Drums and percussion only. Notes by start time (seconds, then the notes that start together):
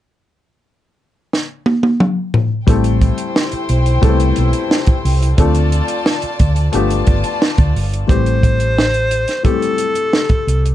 1.33 snare
1.66 high tom
1.83 high tom
2.00 mid tom
2.34 floor tom
2.68 kick, closed hi-hat
2.84 closed hi-hat
3.01 kick, closed hi-hat
3.18 closed hi-hat
3.36 snare
3.52 closed hi-hat
3.69 closed hi-hat
3.86 closed hi-hat
4.03 kick, closed hi-hat
4.20 closed hi-hat
4.36 closed hi-hat
4.53 closed hi-hat
4.71 snare
4.86 kick, closed hi-hat
5.05 open hi-hat
5.22 closed hi-hat
5.38 kick, closed hi-hat
5.55 closed hi-hat
5.72 closed hi-hat
5.88 closed hi-hat
6.06 snare
6.22 closed hi-hat
6.39 kick, closed hi-hat
6.56 closed hi-hat
6.73 closed hi-hat
6.90 closed hi-hat
7.07 kick, closed hi-hat
7.24 closed hi-hat
7.42 snare
7.58 kick, closed hi-hat
7.76 open hi-hat
7.94 closed hi-hat
8.09 kick, closed hi-hat
8.26 closed hi-hat
8.43 kick, closed hi-hat
8.60 closed hi-hat
8.78 snare
8.94 closed hi-hat
9.11 closed hi-hat
9.28 snare, closed hi-hat
9.45 kick, closed hi-hat
9.62 closed hi-hat
9.78 closed hi-hat
9.95 closed hi-hat
10.13 snare
10.29 kick, closed hi-hat
10.48 closed hi-hat
10.66 closed hi-hat